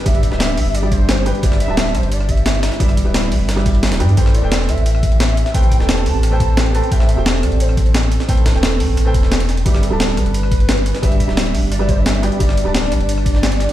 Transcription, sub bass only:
\new Staff \with { instrumentName = "Sub bass" } { \clef bass \time 4/4 \key a \minor \tempo 4 = 175 g,,8. d,,8. b,,16 g,,2 r16 | g,,8. d,,8. b,,16 g,,2 r16 | g,,8. d,,8. b,,16 g,,4. d,,16 g,8 | a,,8. e,,8. d,16 a,,2 r16 |
a,,8. e,,8. d,16 a,,2 r16 | a,,8. e,,8. d,16 a,,2 r16 | a,,8. e,,8. d,16 a,,16 a,,8 e,,4. | g,,8. d,,8. b,,16 g,,2 r16 |
g,,8. d,,8. b,,16 g,,2 r16 | g,,8. d,,8. b,,16 g,,2 r16 | }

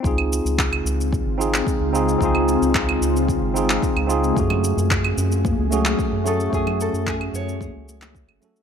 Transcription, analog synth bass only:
\new Staff \with { instrumentName = "Analog synth bass" } { \clef bass \time 4/4 \key des \major \tempo 4 = 111 des,8. des,8. des,8. aes,,8. r16 des,8. | des,8. des,8. des,8. aes,,8. r16 des,8. | ges,8. ges,8. ges,8. des,8. r16 ges,8. | ges,8. ges,8. ges,8. des,4 ges,,16 r8 | }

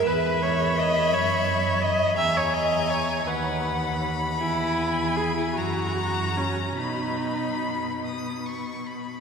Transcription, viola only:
\new Staff \with { instrumentName = "Viola" } { \time 6/8 \key b \major \tempo 4. = 52 b'8 cis''8 dis''8 cis''4 dis''8 | e''16 cis''16 dis''8 cis''8 b'4 r8 | e'4 gis'16 e'16 fis'4 cis'8 | dis'4. r4. | }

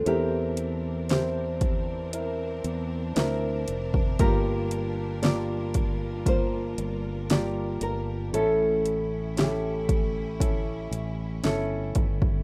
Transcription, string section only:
\new Staff \with { instrumentName = "String section" } { \time 4/4 \key c \mixolydian \tempo 4 = 58 << { bes'1~ | bes'1 | e'1 | } \\ { <e c' d'>1 | <g f'>1 | cis'1 | } >> }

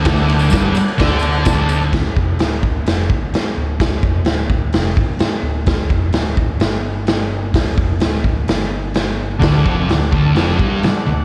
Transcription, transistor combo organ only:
\new Staff \with { instrumentName = "Transistor combo organ" } { \time 4/4 \key c \lydian \tempo 4 = 128 <a' d'' fis''>4 <a' d'' fis''>4 <a' d'' fis''>4 <a' d'' a''>4 | r1 | r1 | r1 |
r1 | <a' d'' fis''>4 <a' d'' fis''>8 <a' d'' a''>8 <a' d'' fis''>4 <a' d'' fis''>4 | }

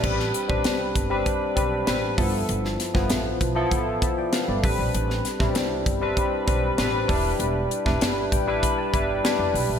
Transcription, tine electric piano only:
\new Staff \with { instrumentName = "Tine electric piano" } { \time 4/4 \key a \minor \tempo 4 = 98 << { r1 | r2 r8 <e'' a''>16 <d'' g''>16 <b' f''>16 <a' d''>8 r16 | r1 | r4. g''8 b''16 a''8 g''16 e''16 d''8. | } \\ { <g c' d' b'>8 r16 <g c' d' b'>8 r8 <g c' d' b'>8 r16 <g c' d' b'>16 r16 <g c' d' b'>8 <f b e' a'>8~ | <f b e' a'>8 r16 <f b e' b'>8 r8 <f b e' a'>8 r4 r16 <g c' d' b'>8~ | <g c' d' b'>8 r16 <g c' d' e'>8 r8 <g c' d' b'>8 r16 <g c' d' b'>16 r16 <g c' d' b'>8 <g d' e' a' b'>8~ | <g d' e' a' b'>8 r16 <g d' e' b'>8 r8 <g d' e' b'>8 r16 <g d' e' b'>16 r16 <g d' e' b'>8 r8 | } >> }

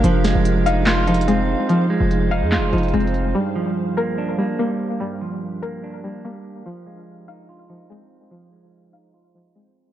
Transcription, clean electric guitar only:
\new Staff \with { instrumentName = "Clean electric guitar" } { \time 4/4 \key f \dorian \tempo 4 = 145 f8 aes4 ees'8 f'8 ees'8 c'4 | f8 aes4 ees'8 f'8 ees'8 c'4 | g,8 f4 bes8 d'8 bes8 g4 | g,8 f4 bes8 d'8 bes8 g4 |
f8 aes4 ees'8 f'8 ees'8 c'4 | f8 aes4 ees'8 f'8 ees'8 c'4 | }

